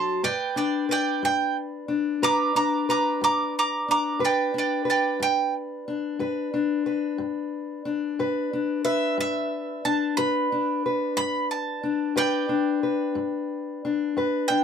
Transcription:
0.00 0.23 F#3 medium
0.00 0.20 F#4 medium
0.00 0.19 A4 medium
0.00 0.22 A5 medium
0.00 0.23 C6 medium
0.23 0.83 G2 medium
0.23 0.89 B4 medium
0.23 0.55 D5 medium
0.23 0.56 G5 medium
0.56 1.88 D4 medium
0.56 0.88 D5 medium
0.56 0.89 G5 medium
0.89 2.22 B4 medium
0.89 1.21 D5 medium
0.89 1.23 G5 medium
1.23 1.82 G2 medium
1.23 1.56 G5 medium
1.88 2.55 D4 medium
2.22 2.82 G2 medium
2.22 2.89 B4 medium
2.22 2.53 A#5 medium
2.22 2.55 D6 loud
2.55 3.88 D4 medium
2.55 2.87 A#5 medium
2.55 2.88 D6 medium
2.89 4.20 B4 medium
2.89 3.20 A#5 medium
2.89 3.22 D6 medium
3.21 3.81 G2 medium
3.21 3.54 A#5 medium
3.21 3.55 D6 medium
3.59 3.88 A#5 medium
3.59 3.89 D6 medium
3.88 4.53 D4 medium
3.88 4.20 A#5 medium
3.88 4.22 D6 medium
4.19 4.80 G2 medium
4.19 4.84 B4 medium
4.25 4.54 D5 medium
4.25 4.55 G5 medium
4.54 5.86 D4 medium
4.58 4.87 D5 medium
4.58 4.88 G5 medium
4.85 6.18 B4 medium
4.90 5.19 D5 medium
4.90 5.21 G5 medium
5.20 5.79 G2 medium
5.20 5.53 G5 loud
5.88 6.52 D4 medium
6.19 6.79 G2 medium
6.19 6.85 B4 medium
6.54 7.84 D4 medium
6.86 8.14 B4 medium
7.18 7.78 G2 medium
7.85 8.52 D4 medium
8.19 8.78 G2 medium
8.19 8.84 B4 medium
8.53 9.85 D4 medium
8.85 10.18 B4 medium
8.85 9.17 E5 medium
9.18 9.77 G2 medium
9.18 9.83 E5 medium
9.85 10.52 D4 medium
9.85 10.16 A5 medium
10.17 10.77 G2 medium
10.17 10.85 B4 medium
10.17 11.13 B5 medium
10.52 11.83 D4 medium
10.86 12.16 B4 medium
11.17 11.76 G2 medium
11.17 11.49 B5 medium
11.51 12.14 A5 medium
11.83 12.49 D4 medium
12.16 12.75 G2 medium
12.16 12.83 B4 medium
12.16 14.11 D5 medium
12.16 14.11 G5 medium
12.49 13.84 D4 medium
12.83 14.17 B4 medium
13.15 13.75 G2 medium
13.85 14.50 D4 medium
14.17 14.64 G2 medium
14.17 14.64 B4 medium
14.48 14.64 D4 medium
14.48 14.64 G5 loud

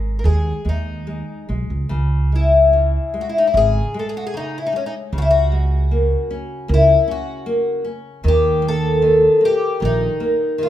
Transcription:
0.00 0.26 G#1 medium
0.00 0.22 G#3 soft
0.00 0.18 A#4 medium
0.19 0.25 A#4 medium
0.24 0.51 D#2 medium
0.24 0.63 G#3 soft
0.24 0.67 G#4 medium
0.65 1.20 D#2 medium
0.65 1.06 G#3 soft
0.69 1.47 D#4 medium
1.07 1.47 G#3 soft
1.49 1.68 B1 medium
1.49 1.89 G#3 soft
1.70 1.89 C#2 medium
1.89 2.97 C#2 medium
1.89 2.72 C#3 medium
2.32 2.72 G#3 soft
2.32 3.21 E4 medium
2.73 3.12 C#3 soft
3.14 3.53 G#3 soft
3.21 3.28 F#4 medium
3.29 3.37 E4 medium
3.38 3.46 D#4 medium
3.47 3.55 E4 medium
3.53 3.80 G#1 medium
3.53 3.92 C#3 soft
3.53 3.96 G#4 loud
3.94 4.32 G#3 medium
3.99 4.07 A4 medium
4.09 4.17 G#4 medium
4.17 4.25 F#4 medium
4.27 4.34 G#4 medium
4.34 4.72 C#3 medium
4.34 4.57 D#4 medium
4.58 4.66 E4 medium
4.67 4.75 D#4 medium
4.72 5.11 G#3 soft
4.72 4.84 C#4 medium
4.86 4.94 D#4 medium
5.13 6.15 C#2 medium
5.13 8.21 C#3 medium
5.18 5.27 E4 medium
5.18 5.21 F#4 medium
5.31 6.73 F#4 medium
5.52 5.90 G#3 medium
5.91 6.29 A#3 medium
6.30 6.68 C#4 medium
6.68 6.94 C#2 medium
6.68 7.06 A#3 medium
6.74 7.08 E4 medium
7.08 7.45 C#4 medium
7.08 7.83 F#4 medium
7.46 7.84 A#3 medium
7.84 8.23 C#4 medium
8.24 9.26 D#2 medium
8.24 9.01 D#3 medium
8.28 8.67 G4 loud
8.62 9.01 A#3 medium
8.68 9.45 A4 loud
9.02 9.41 D#3 medium
9.41 9.79 A#3 medium
9.45 9.84 G4 loud
9.80 10.07 A#1 medium
9.80 10.18 D#3 medium
9.85 10.63 D#4 medium
10.20 10.58 A#3 medium
10.58 10.69 D#3 medium
10.63 10.69 F4 medium

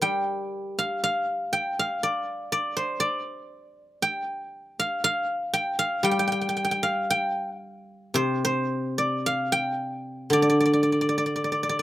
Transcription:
0.00 3.01 G3 medium
0.00 1.11 A#4 medium
0.00 0.57 D5 medium
0.00 1.52 G5 loud
0.79 1.03 F5 medium
1.04 1.79 F5 loud
1.53 3.08 G5 loud
1.79 3.46 F5 medium
2.03 2.52 D5 medium
2.52 3.00 D5 medium
2.77 4.75 C5 medium
3.00 4.85 D5 loud
4.02 5.53 G5 loud
4.79 5.04 F5 medium
5.04 5.78 F5 loud
5.53 6.04 G5 loud
5.79 6.83 F5 loud
6.03 9.22 G3 medium
6.03 6.11 G5 loud
6.11 6.19 G5 medium
6.19 6.27 G5 medium
6.28 6.32 G5 medium
6.32 6.41 G5 medium
6.41 6.48 G5 medium
6.49 6.56 G5 medium
6.57 6.64 G5 medium
6.64 6.71 G5 medium
6.71 7.10 G5 medium
6.83 7.58 F5 loud
7.10 7.58 G5 loud
7.58 8.66 F5 loud
8.14 10.32 C3 medium
8.14 8.44 C5 loud
8.45 10.43 C5 loud
8.98 10.33 D5 medium
9.26 10.93 F5 loud
9.52 11.08 G5 loud
10.30 11.82 D3 medium
10.30 10.42 D5 loud
10.42 10.49 D5 medium
10.50 10.60 D5 medium
10.60 10.65 D5 medium
10.66 10.73 D5 medium
10.73 10.82 D5 medium
10.83 10.92 D5 medium
10.92 11.01 D5 soft
11.01 11.08 D5 medium
11.09 11.17 D5 medium
11.18 11.26 D5 medium
11.26 11.35 D5 soft
11.36 11.44 D5 medium
11.44 11.52 D5 medium
11.52 11.63 D5 medium
11.63 11.69 D5 medium
11.69 11.79 D5 medium
11.79 11.82 D5 medium

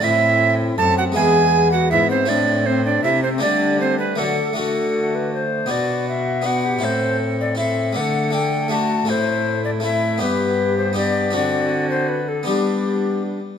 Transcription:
0.00 0.75 A2 medium
0.00 1.11 A3 medium
0.00 1.12 C4 medium
0.00 1.13 E4 medium
0.00 0.78 E4 medium
0.00 0.55 E5 loud
0.05 0.76 C4 medium
0.78 1.12 F#2 medium
0.78 1.16 F#2 medium
0.78 1.18 C4 medium
0.78 0.97 A4 medium
0.78 0.97 A5 loud
0.98 1.04 F#4 medium
0.98 1.04 F#5 loud
1.12 1.88 E2 medium
1.12 2.24 G#3 medium
1.12 2.24 B3 medium
1.12 2.25 E4 medium
1.12 1.71 G#5 loud
1.16 1.93 E2 medium
1.16 1.92 B3 medium
1.16 1.73 G#4 medium
1.72 1.91 F#4 medium
1.72 1.91 F#5 loud
1.91 2.30 G#2 medium
1.91 2.25 G#2 medium
1.91 2.31 B3 medium
1.91 2.10 E4 medium
1.91 2.10 E5 loud
2.10 2.29 C4 medium
2.10 2.30 C5 medium
2.25 3.00 A2 medium
2.25 3.04 A2 medium
2.25 3.37 A3 medium
2.25 3.38 C4 medium
2.25 2.66 D4 medium
2.25 3.38 E4 medium
2.25 2.68 D5 loud
2.29 2.66 C4 medium
2.66 2.85 C4 medium
2.66 3.04 C4 medium
2.66 2.85 C5 medium
2.85 3.06 D4 medium
2.85 3.03 D5 medium
3.04 3.44 C3 medium
3.04 3.39 C3 medium
3.04 3.42 C4 medium
3.04 3.23 E4 medium
3.04 3.22 E5 loud
3.23 3.42 C4 medium
3.23 3.29 C5 medium
3.38 4.15 D3 medium
3.38 4.15 A3 medium
3.38 4.15 D4 medium
3.38 4.16 G4 medium
3.38 3.80 D5 medium
3.43 4.18 D3 medium
3.43 4.21 G3 medium
3.43 3.80 D4 medium
3.80 4.00 C4 medium
3.80 3.98 C5 medium
3.99 4.20 B4 medium
3.99 4.21 B4 medium
4.16 4.38 D3 medium
4.16 4.36 D3 soft
4.16 4.38 F#3 medium
4.16 4.52 A3 soft
4.16 4.54 D4 soft
4.16 4.55 F#4 soft
4.16 4.56 A4 medium
4.20 4.56 A4 medium
4.53 5.66 D3 soft
4.53 5.65 A3 soft
4.53 5.66 D4 soft
4.53 5.66 F#4 soft
4.53 5.44 F#4 medium
4.53 5.17 A4 medium
4.58 5.67 D3 medium
4.58 5.72 A3 medium
5.15 5.33 B4 medium
5.34 5.72 C5 medium
5.66 6.79 B2 soft
5.66 6.41 B3 soft
5.66 6.41 D4 soft
5.66 6.43 F#4 soft
5.70 6.81 B2 medium
5.70 6.46 B3 medium
5.70 6.44 F#4 soft
5.70 6.08 D5 medium
6.08 6.48 E5 medium
6.42 6.80 B3 soft
6.42 6.81 D4 soft
6.42 6.81 F#4 soft
6.42 6.66 F#4 medium
6.46 6.86 B3 medium
6.46 6.86 F#5 medium
6.65 6.85 G4 soft
6.79 7.54 C4 soft
6.79 7.55 E4 soft
6.79 7.56 A4 soft
6.83 7.92 A2 soft
6.83 7.98 A2 medium
6.83 7.59 C4 medium
6.83 7.58 A4 soft
6.83 7.18 C5 medium
7.41 7.57 D5 medium
7.55 7.93 C4 soft
7.55 7.94 E4 soft
7.55 7.95 A4 soft
7.55 7.95 A4 medium
7.55 7.98 E5 medium
7.60 8.00 C4 medium
7.93 9.09 D3 medium
7.93 8.29 A3 soft
7.93 8.31 D4 soft
7.93 8.32 A4 soft
7.93 8.02 B4 medium
7.93 8.33 F#5 medium
7.97 9.05 D3 medium
7.97 8.35 A3 medium
7.97 8.33 A4 medium
8.31 8.67 A3 soft
8.31 8.68 D4 soft
8.31 8.70 A4 soft
8.31 8.71 G5 medium
8.35 8.72 A3 medium
8.35 8.73 A4 medium
8.68 9.04 A3 soft
8.68 9.07 D4 soft
8.68 9.07 F#4 soft
8.68 8.76 G4 medium
8.68 9.11 A5 medium
8.73 9.09 A3 medium
8.73 9.08 F#4 medium
9.05 10.17 A2 medium
9.05 10.23 A2 medium
9.05 9.79 A3 medium
9.05 9.80 C4 soft
9.05 9.81 E4 soft
9.05 9.13 F#4 soft
9.09 9.83 A3 medium
9.09 9.83 E4 medium
9.09 9.64 C5 medium
9.65 9.71 D5 medium
9.80 10.18 A3 soft
9.80 10.19 C4 soft
9.80 10.20 E4 soft
9.80 10.22 E4 medium
9.85 10.24 A3 medium
9.85 10.21 E5 medium
10.18 11.30 G2 medium
10.18 11.36 G2 medium
10.18 10.92 B3 medium
10.18 10.93 D4 medium
10.18 10.94 G4 soft
10.18 10.95 G4 medium
10.22 10.96 B3 medium
10.22 10.77 B4 medium
10.78 10.96 C5 medium
10.93 11.31 B3 soft
10.93 11.31 D4 soft
10.93 11.32 G4 soft
10.93 11.36 G4 medium
10.97 11.37 B3 medium
10.97 11.34 D5 medium
11.31 12.44 D3 medium
11.31 12.49 D3 medium
11.31 12.42 C4 medium
11.31 12.43 D4 soft
11.31 12.44 F#4 medium
11.31 12.19 F#4 medium
11.35 12.20 C4 medium
11.35 11.89 D5 medium
11.90 12.10 C5 medium
12.09 12.30 B4 medium
12.28 12.47 A4 medium
12.43 13.57 B3 soft
12.43 13.58 D4 soft
12.43 13.39 D4 medium
12.43 13.58 G4 soft
12.47 13.39 G3 soft
12.47 13.43 G3 medium
12.47 13.40 B3 medium
12.47 13.23 G4 medium

